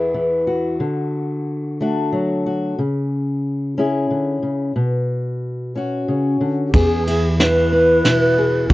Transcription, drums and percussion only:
6.74 kick, ride
7.07 ride
7.40 snare, ride
8.05 snare, ride
8.70 kick, ride

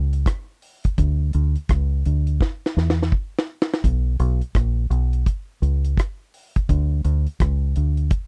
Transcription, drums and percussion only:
0.13 closed hi-hat
0.26 kick, cross-stick, closed hi-hat
0.62 open hi-hat
0.84 kick, closed hi-hat
0.98 kick, closed hi-hat
1.33 closed hi-hat
1.56 closed hi-hat
1.69 kick, cross-stick, closed hi-hat
2.06 closed hi-hat
2.27 closed hi-hat
2.41 kick, snare
2.66 snare
2.78 snare
2.90 snare
3.03 snare
3.12 kick
3.39 snare
3.62 snare
3.74 snare
3.84 kick, closed hi-hat
4.20 closed hi-hat
4.41 closed hi-hat
4.55 kick, cross-stick, closed hi-hat
4.91 closed hi-hat
5.13 closed hi-hat
5.26 kick, closed hi-hat
5.63 closed hi-hat
5.85 closed hi-hat
5.97 kick, cross-stick, closed hi-hat
6.34 open hi-hat
6.56 kick, closed hi-hat
6.69 kick, closed hi-hat
7.05 closed hi-hat
7.27 closed hi-hat
7.40 kick, cross-stick, closed hi-hat
7.76 closed hi-hat
7.97 closed hi-hat
8.11 kick, closed hi-hat

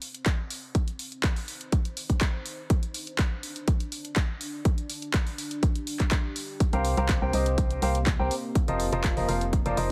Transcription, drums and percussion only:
0.02 open hi-hat
0.14 closed hi-hat
0.26 kick, clap, closed hi-hat
0.50 open hi-hat
0.75 kick, closed hi-hat
0.88 closed hi-hat
0.99 open hi-hat
1.12 closed hi-hat
1.24 kick, clap, closed hi-hat
1.36 open hi-hat
1.48 open hi-hat
1.61 closed hi-hat
1.72 kick, closed hi-hat
1.85 closed hi-hat
1.97 open hi-hat
2.10 kick, closed hi-hat
2.21 kick, clap, closed hi-hat
2.46 open hi-hat
2.70 kick, closed hi-hat
2.83 closed hi-hat
2.94 open hi-hat
3.07 closed hi-hat
3.19 kick, clap, closed hi-hat
3.43 open hi-hat
3.56 closed hi-hat
3.68 kick, closed hi-hat
3.80 closed hi-hat
3.92 open hi-hat
4.05 closed hi-hat
4.16 kick, clap, closed hi-hat
4.41 open hi-hat
4.65 kick, closed hi-hat
4.78 closed hi-hat
4.90 open hi-hat
5.02 closed hi-hat
5.14 kick, clap, closed hi-hat
5.27 open hi-hat
5.38 open hi-hat
5.51 closed hi-hat
5.63 kick, closed hi-hat
5.75 closed hi-hat
5.87 open hi-hat
6.00 kick, clap, closed hi-hat
6.11 kick, clap, closed hi-hat
6.36 open hi-hat
6.60 kick, closed hi-hat
6.73 closed hi-hat
6.85 open hi-hat
6.97 closed hi-hat
7.09 kick, clap, closed hi-hat
7.33 open hi-hat
7.46 closed hi-hat
7.58 kick, closed hi-hat
7.71 closed hi-hat
7.82 open hi-hat
7.95 closed hi-hat
8.07 kick, clap, closed hi-hat
8.31 open hi-hat
8.55 kick, closed hi-hat
8.68 closed hi-hat
8.80 open hi-hat
8.93 closed hi-hat
9.04 kick, clap, closed hi-hat
9.17 open hi-hat
9.29 open hi-hat
9.41 closed hi-hat
9.53 kick, closed hi-hat
9.66 closed hi-hat
9.77 open hi-hat

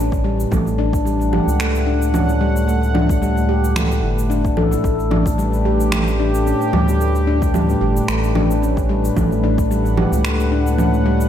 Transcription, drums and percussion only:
0.12 kick, shaker
0.40 shaker
0.52 kick, low conga, shaker
0.67 shaker
0.93 kick, shaker
1.07 shaker
1.21 shaker
1.33 low conga
1.48 shaker
1.60 finger snap, shaker
1.75 shaker
2.02 shaker
2.14 low conga, shaker
2.29 shaker
2.56 shaker
2.69 shaker
2.83 shaker
2.95 low conga
3.09 kick, shaker
3.23 shaker
3.37 shaker
3.64 shaker
3.76 finger snap, low conga, shaker
3.92 shaker
4.19 shaker
4.31 shaker
4.45 kick, shaker
4.57 low conga
4.72 shaker
4.84 kick, shaker
5.00 shaker
5.11 low conga
5.26 kick, shaker
5.39 shaker
5.54 shaker
5.80 shaker
5.92 finger snap, low conga, shaker
6.08 shaker
6.35 shaker
6.47 shaker
6.62 shaker
6.73 low conga
6.88 shaker
7.01 shaker
7.15 shaker
7.42 kick, shaker
7.54 low conga, shaker
7.70 shaker
7.97 shaker
8.08 finger snap, shaker
8.24 shaker
8.35 low conga
8.51 shaker
8.63 shaker
8.77 kick, shaker
9.05 shaker
9.17 kick, low conga, shaker
9.32 shaker
9.58 kick, shaker
9.71 shaker
9.86 shaker
9.98 low conga
10.13 shaker
10.25 finger snap, shaker
10.40 shaker
10.67 shaker
10.79 low conga, shaker
10.94 shaker
11.21 shaker

